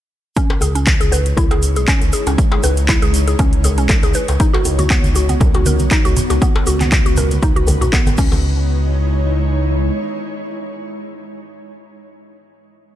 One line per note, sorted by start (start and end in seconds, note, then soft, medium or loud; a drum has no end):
0.36 4.36 G#3 medium
0.36 0.49 C#4 loud
0.36 8.14 D#4 medium
0.36 4.36 E4 medium
0.36 6.38 C#5 loud
0.36 kick loud
0.36 closed hi-hat medium
0.36 shaker soft
0.50 djembe slap loud
0.61 0.96 C#2 loud
0.61 0.74 G#4 medium
0.61 open hi-hat medium
0.61 djembe tone medium
0.61 shaker medium
0.75 0.86 C#4 medium
0.75 closed hi-hat soft
0.75 shaker soft
0.87 kick loud
0.87 clap loud
0.87 closed hi-hat medium
0.87 shaker medium
1.01 1.33 C#2 loud
1.01 1.12 G#4 medium
1.01 closed hi-hat soft
1.01 shaker soft
1.12 1.25 B4 medium
1.12 open hi-hat medium
1.12 djembe tone medium
1.12 shaker medium
1.26 closed hi-hat soft
1.26 shaker soft
1.37 1.78 C#2 loud
1.37 1.45 E4 loud
1.37 kick loud
1.37 closed hi-hat medium
1.37 djembe bass medium
1.37 shaker medium
1.51 1.61 G#4 loud
1.51 closed hi-hat soft
1.51 djembe slap medium
1.63 open hi-hat loud
1.63 shaker loud
1.76 1.85 B1 medium
1.76 1.87 G#4 medium
1.76 closed hi-hat soft
1.76 shaker soft
1.88 2.00 C#4 loud
1.88 kick loud
1.88 clap loud
1.88 closed hi-hat medium
1.88 shaker soft
2.01 2.11 C#2 loud
2.01 closed hi-hat soft
2.01 djembe tone medium
2.01 shaker soft
2.13 2.25 G#4 medium
2.13 open hi-hat medium
2.13 shaker medium
2.27 2.36 C#2 medium
2.27 2.37 C#4 medium
2.27 closed hi-hat soft
2.27 djembe slap medium
2.27 shaker soft
2.38 kick loud
2.38 closed hi-hat medium
2.38 shaker medium
2.52 2.63 G#4 medium
2.52 djembe slap loud
2.63 2.98 C#2 loud
2.63 2.76 B4 medium
2.63 open hi-hat medium
2.63 djembe tone medium
2.63 shaker loud
2.77 closed hi-hat soft
2.77 shaker soft
2.89 2.96 E4 loud
2.89 kick loud
2.89 clap loud
2.89 closed hi-hat medium
2.89 shaker medium
3.02 3.35 C#2 loud
3.02 3.13 G#4 loud
3.02 closed hi-hat soft
3.02 shaker soft
3.14 open hi-hat medium
3.14 shaker loud
3.28 3.38 G#4 medium
3.28 closed hi-hat soft
3.28 shaker soft
3.39 3.80 C#2 loud
3.39 3.51 C#4 loud
3.39 kick loud
3.39 closed hi-hat medium
3.39 shaker medium
3.53 closed hi-hat soft
3.64 3.77 G#4 medium
3.64 open hi-hat loud
3.64 djembe tone medium
3.64 djembe bass medium
3.64 shaker loud
3.78 3.87 B1 medium
3.78 3.88 C#4 medium
3.78 closed hi-hat soft
3.78 shaker soft
3.89 kick loud
3.89 clap loud
3.89 closed hi-hat medium
3.89 djembe bass medium
3.89 shaker medium
4.03 4.12 C#2 loud
4.03 4.14 G#4 medium
4.03 closed hi-hat soft
4.03 djembe slap medium
4.03 shaker soft
4.14 4.27 B4 medium
4.14 open hi-hat medium
4.14 shaker loud
4.28 4.38 C#2 medium
4.28 closed hi-hat soft
4.28 djembe slap medium
4.28 shaker soft
4.40 8.14 B3 medium
4.40 4.47 D#4 loud
4.40 8.14 F#4 medium
4.40 kick loud
4.40 closed hi-hat medium
4.40 shaker medium
4.53 4.64 F#4 loud
4.53 djembe slap loud
4.65 4.99 C#2 loud
4.65 open hi-hat medium
4.65 djembe tone medium
4.65 shaker medium
4.79 4.89 F#4 medium
4.79 closed hi-hat soft
4.79 high conga loud
4.79 shaker soft
4.90 5.03 B3 loud
4.90 kick loud
4.90 clap loud
4.90 closed hi-hat medium
4.90 shaker medium
5.04 5.37 C#2 loud
5.04 closed hi-hat soft
5.04 high conga medium
5.04 shaker soft
5.15 5.28 F#4 medium
5.15 open hi-hat medium
5.15 djembe tone medium
5.15 shaker medium
5.29 5.40 B3 medium
5.29 closed hi-hat soft
5.29 high conga medium
5.29 shaker soft
5.40 5.81 C#2 loud
5.40 kick loud
5.40 closed hi-hat medium
5.40 low conga loud
5.40 djembe bass loud
5.40 shaker medium
5.54 5.66 F#4 medium
5.54 closed hi-hat soft
5.54 djembe slap medium
5.66 5.78 A#4 medium
5.66 open hi-hat medium
5.66 high conga loud
5.66 shaker loud
5.79 5.89 B1 medium
5.79 closed hi-hat soft
5.79 high conga medium
5.79 shaker soft
5.91 5.99 D#4 loud
5.91 kick loud
5.91 clap loud
5.91 closed hi-hat medium
5.91 shaker medium
6.05 6.14 C#2 loud
6.05 6.15 F#4 loud
6.05 closed hi-hat soft
6.05 djembe tone medium
6.05 shaker soft
6.17 open hi-hat medium
6.17 high conga medium
6.17 low conga medium
6.17 shaker loud
6.30 6.39 C#2 medium
6.30 6.41 F#4 medium
6.30 closed hi-hat soft
6.30 djembe slap medium
6.30 shaker soft
6.42 6.54 B3 loud
6.42 8.16 B4 medium
6.42 kick loud
6.42 closed hi-hat medium
6.42 shaker medium
6.56 djembe slap loud
6.67 7.01 C#2 loud
6.67 6.79 F#4 medium
6.67 open hi-hat medium
6.67 djembe tone medium
6.67 shaker medium
6.81 6.91 B3 medium
6.81 clap soft
6.81 closed hi-hat soft
6.81 high conga loud
6.81 shaker soft
6.92 kick loud
6.92 clap loud
6.92 closed hi-hat medium
6.92 shaker medium
7.06 7.39 C#2 loud
7.06 7.17 F#4 medium
7.06 closed hi-hat soft
7.06 shaker soft
7.17 7.30 A#4 medium
7.17 open hi-hat medium
7.17 low conga medium
7.17 shaker medium
7.31 closed hi-hat soft
7.31 high conga medium
7.31 shaker soft
7.43 7.83 C#2 loud
7.43 7.50 D#4 loud
7.43 kick loud
7.43 closed hi-hat medium
7.43 shaker medium
7.56 7.67 F#4 loud
7.56 closed hi-hat soft
7.67 open hi-hat medium
7.67 djembe tone medium
7.67 high conga loud
7.67 djembe bass medium
7.67 shaker medium
7.81 7.90 B1 medium
7.81 7.92 F#4 medium
7.81 closed hi-hat soft
7.81 low conga medium
7.81 shaker soft
7.93 8.05 B3 loud
7.93 kick loud
7.93 clap loud
7.93 closed hi-hat medium
7.93 djembe bass medium
7.93 shaker medium
8.07 8.17 G#1 medium
8.07 closed hi-hat soft
8.07 djembe slap medium
8.07 high conga medium
8.07 shaker soft
8.18 9.91 C#2 loud
8.18 11.46 G#3 medium
8.18 8.65 C#4 loud
8.18 11.46 D#4 medium
8.18 11.46 E4 medium
8.18 11.46 C#5 medium
8.18 kick loud
8.18 crash medium
8.18 shaker loud
8.32 djembe slap medium
8.32 high conga loud
8.32 shaker soft